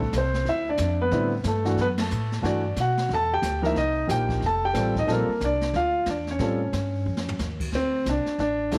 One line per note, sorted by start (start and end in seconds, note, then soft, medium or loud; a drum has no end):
0.00 0.12 A#1 medium
0.00 0.12 A3 medium
0.00 0.15 A4 medium
0.00 kick medium
0.13 0.45 C2 medium
0.13 0.45 C4 medium
0.13 kick soft
0.13 snare medium
0.13 hi-hat pedal soft
0.18 0.49 C5 medium
0.34 snare soft
0.45 0.77 D2 medium
0.45 0.66 E4 medium
0.45 0.69 E5 medium
0.45 brush sweep soft
0.45 kick soft
0.45 snare soft
0.69 0.99 D4 medium
0.69 1.02 D5 medium
0.77 1.11 F2 loud
0.77 kick soft
0.77 snare medium
0.77 hi-hat pedal medium
1.02 1.31 B3 medium
1.02 1.31 B4 loud
1.11 1.44 A2 medium
1.11 1.30 D3 medium
1.11 1.31 G3 medium
1.11 1.31 C4 medium
1.11 1.31 E4 medium
1.11 brush sweep soft
1.11 kick soft
1.11 snare soft
1.44 1.76 G2 medium
1.44 1.63 A3 medium
1.44 kick soft
1.44 snare medium
1.44 hi-hat pedal medium
1.48 1.77 A4 medium
1.64 1.76 E3 medium
1.64 1.76 A3 medium
1.64 1.77 D4 medium
1.64 1.77 F#4 medium
1.64 snare soft
1.77 2.09 F#2 medium
1.77 1.86 B3 medium
1.77 brush sweep soft
1.77 kick soft
1.77 snare soft
1.81 1.86 B4 loud
1.98 2.29 A3 medium
1.98 2.30 A4 medium
1.98 snare medium
1.98 ride medium
2.10 2.43 A2 loud
2.10 hi-hat pedal medium
2.32 snare soft
2.42 2.75 G2 medium
2.42 2.61 E3 medium
2.42 2.61 A3 medium
2.42 2.62 D4 medium
2.42 2.62 F#4 medium
2.42 2.75 D5 medium
2.42 brush sweep medium
2.42 kick soft
2.42 snare soft
2.76 3.09 B2 medium
2.76 3.09 F#4 medium
2.76 kick soft
2.76 snare medium
2.76 hi-hat pedal medium
2.81 3.10 F#5 medium
2.98 snare soft
3.09 3.41 E2 medium
3.09 brush sweep soft
3.09 kick soft
3.09 snare soft
3.13 3.31 A4 medium
3.13 3.33 A5 loud
3.33 3.63 G4 medium
3.33 3.63 G5 loud
3.42 3.74 D2 medium
3.42 kick soft
3.42 snare medium
3.42 hi-hat pedal medium
3.62 3.74 F3 medium
3.62 3.74 A#3 medium
3.62 3.74 D#4 medium
3.62 3.74 A#4 medium
3.62 snare soft
3.66 3.77 E4 medium
3.66 3.76 E5 medium
3.75 4.08 C2 medium
3.75 4.07 D#4 medium
3.75 4.07 D#5 loud
3.75 brush sweep soft
3.75 kick soft
3.75 snare soft
4.07 4.40 A#1 medium
4.07 4.41 F3 medium
4.07 4.41 A#3 medium
4.07 4.41 D#4 medium
4.07 4.42 G4 medium
4.07 4.44 G5 loud
4.07 kick soft
4.07 snare medium
4.07 hi-hat pedal medium
4.29 kick medium
4.29 snare soft
4.41 4.73 F1 medium
4.41 brush sweep soft
4.41 kick soft
4.41 snare soft
4.46 4.63 A4 medium
4.46 4.63 A5 loud
4.65 4.94 G4 medium
4.65 4.98 G5 loud
4.74 5.07 A1 medium
4.74 4.93 G3 medium
4.74 4.93 C4 medium
4.74 4.93 F4 medium
4.74 4.93 A4 medium
4.74 kick soft
4.74 snare medium
4.74 hi-hat pedal soft
4.95 5.08 D#4 medium
4.95 5.10 D#5 medium
4.95 kick medium
4.95 snare soft
5.07 5.27 A#1 medium
5.07 5.26 G3 medium
5.07 5.26 C4 medium
5.07 5.26 F4 medium
5.07 5.26 A4 medium
5.07 brush sweep soft
5.07 kick soft
5.07 snare soft
5.12 5.41 A#3 medium
5.12 5.44 A#4 medium
5.28 muted upright bass stroke soft
5.41 5.73 C2 medium
5.41 5.73 D4 medium
5.41 kick soft
5.41 snare medium
5.41 hi-hat pedal medium
5.45 5.74 D5 medium
5.61 snare soft
5.73 6.06 D2 medium
5.73 6.06 F4 medium
5.73 6.06 F5 loud
5.73 brush sweep soft
5.73 kick soft
5.73 snare soft
6.06 6.38 E2 medium
6.06 6.27 D4 medium
6.06 kick soft
6.06 snare medium
6.06 hi-hat pedal soft
6.10 6.28 D5 medium
6.27 7.37 C#4 medium
6.27 7.37 C#5 medium
6.27 snare soft
6.39 6.71 A2 medium
6.39 6.58 G3 medium
6.39 6.59 C4 medium
6.39 6.59 F4 medium
6.39 6.59 A4 medium
6.39 brush sweep soft
6.39 kick soft
6.39 snare soft
6.73 7.05 G2 medium
6.73 kick soft
6.73 snare medium
6.73 hi-hat pedal medium
7.06 7.38 F2 medium
7.17 snare medium
7.29 floor tom medium
7.39 7.71 D#2 medium
7.39 snare medium
7.39 hi-hat pedal medium
7.60 kick medium
7.60 crash medium
7.72 8.05 D2 medium
7.72 8.08 C4 loud
7.72 brush sweep soft
7.72 kick soft
7.72 snare soft
8.06 8.25 C2 medium
8.06 8.39 D4 medium
8.06 kick soft
8.06 snare medium
8.06 hi-hat pedal medium
8.25 muted upright bass stroke soft
8.25 snare soft
8.38 8.71 A1 medium
8.38 8.70 D4 loud
8.38 brush sweep soft
8.38 kick soft
8.38 snare soft
8.71 8.78 D2 medium
8.71 8.78 D3 medium
8.71 8.78 G3 medium
8.71 8.78 A3 medium
8.71 8.78 C4 medium
8.71 8.78 E4 medium
8.71 kick soft
8.71 snare medium
8.71 hi-hat pedal medium